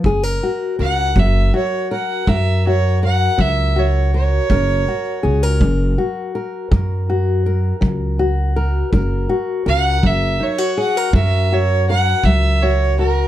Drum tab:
BD |o--o--o--o--|o--o--o--o--|o--o--o--o--|